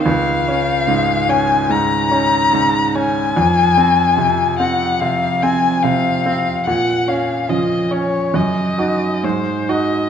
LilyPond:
<<
  \new Staff \with { instrumentName = "Violin" } { \time 4/4 \key des \major \tempo 4 = 72 f''4. aes''8 bes''4. aes''8~ | aes''4. ges''8 f''8 aes''8 f''4 | ges''8 f''8 ees''8 des''8 ees''4 c''8 ees''8 | }
  \new Staff \with { instrumentName = "Grand piano" } { \time 4/4 \key des \major des,8 des'8 aes,8 des'8 aes,8 des'8 aes,8 des'8 | f,8 c'8 c8 c'8 c8 c'8 c8 c'8 | bes,8 des'8 f8 des'8 ges,8 <ees' ges'>8 aes,8 <ees' ges'>8 | }
  \new Staff \with { instrumentName = "Cello" } { \clef bass \time 4/4 \key des \major r4 des4 r4 des4 | r4 c4 r4 c4 | r4 des4 des4 ges4 | }
>>